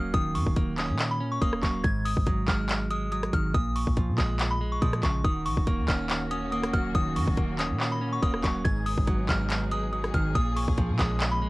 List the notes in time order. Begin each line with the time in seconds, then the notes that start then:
Already playing: D#1 F#3 A#3 C#4
0.14 D#1 D#3 D#6, kick, closed hi-hat
0.35 F#2 C#6, open hi-hat
0.47 D#1, kick
0.56 A#3, kick, closed hi-hat
0.78 C#4 D#6, clap, closed hi-hat
0.89 A#2
0.99 clap, closed hi-hat
1.11 B5
1.20 C#4
1.32 C#6
1.41 D#1 A#3 D#6, kick, closed hi-hat
1.53 cross-stick
1.63 D#1 F#3 C#6, kick, clap, closed hi-hat
1.84 G#1 G#2 G#6, kick, closed hi-hat
2.05 D#6, open hi-hat
2.17 G#1, kick
2.27 F#3, kick, closed hi-hat
2.48 G#1 G#3 F6, kick, clap, closed hi-hat
2.69 clap, closed hi-hat
2.90 G#3 D#6, closed hi-hat
3.12 F#3 D#6, closed hi-hat
3.23 cross-stick, closed hi-hat
3.33 G#1 D#3 F6, kick, closed hi-hat
3.54 A#1 A#2 D#6, kick, closed hi-hat
3.75 C#6, open hi-hat
3.87 A#1, kick
3.97 F3, kick, closed hi-hat
4.08 A#2
4.18 A#1 G#3 D#6, kick, clap, closed hi-hat
4.39 clap, closed hi-hat
4.51 B5
4.61 G#3
4.72 C#6
4.82 A#2 F3 D#6, kick, closed hi-hat
4.93 cross-stick, closed hi-hat
5.03 A#1 C#3 C#6, kick, clap, closed hi-hat
5.25 D#1 D#3 A#3 C#4 F#4 D#6, kick, closed hi-hat
5.46 A#1 C#6, open hi-hat
5.57 D#1, kick
5.67 A#3, kick, closed hi-hat
5.79 D#2
5.88 D#1 C#4 F6, kick, clap, closed hi-hat
6.10 clap, closed hi-hat
6.31 C#4 D#6, closed hi-hat
6.52 A#3 D#6, closed hi-hat
6.64 cross-stick, closed hi-hat
6.73 D#1 F#3 F6, kick, closed hi-hat
6.95 D#1 D#3 D#6, kick, closed hi-hat
7.16 F#2 C#6, open hi-hat
7.27 D#1, kick
7.37 A#3, kick, closed hi-hat
7.59 C#4 D#6, clap, closed hi-hat
7.70 A#2
7.80 clap, closed hi-hat
7.92 B5
8.01 C#4
8.13 C#6
8.22 D#1 A#3 D#6, kick, closed hi-hat
8.34 cross-stick
8.44 D#1 F#3 C#6, kick, clap, closed hi-hat
8.65 G#1 G#2 F#3 B3 D#4 G#4 G#6, kick, closed hi-hat
8.86 D#6, open hi-hat
8.98 G#1, kick
9.07 F#3, kick, closed hi-hat
9.29 G#1 G#3 F6, kick, clap, closed hi-hat
9.50 clap, closed hi-hat
9.71 G#3 D#6, closed hi-hat
9.93 F#3 D#6, closed hi-hat
10.04 cross-stick, closed hi-hat
10.14 G#1 D#3 F6, kick, closed hi-hat
10.35 A#1 A#2 F3 A#3 C#4 D#6, kick, closed hi-hat
10.56 C#6, open hi-hat
10.68 A#1, kick
10.78 F3, kick, closed hi-hat
10.89 A#2
10.99 A#1 G#3 D#6, kick, clap, closed hi-hat
11.20 clap, closed hi-hat
11.32 B5
11.42 G#3